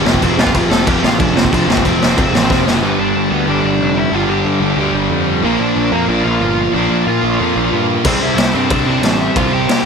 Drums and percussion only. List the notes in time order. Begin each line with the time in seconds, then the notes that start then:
0.06 snare
0.14 kick
0.22 kick, crash
0.39 snare
0.47 kick
0.55 kick, crash
0.71 snare
0.87 kick, crash
1.04 snare
1.20 kick, crash
1.37 snare
1.45 kick
1.53 kick, crash
1.70 snare
1.77 kick
1.85 kick, crash
2.02 snare
2.18 kick, crash
2.35 snare
2.50 kick, snare
2.67 snare
8.05 kick, crash
8.38 snare, ride
8.70 kick, ride
9.03 snare, ride
9.36 kick, ride
9.69 snare, ride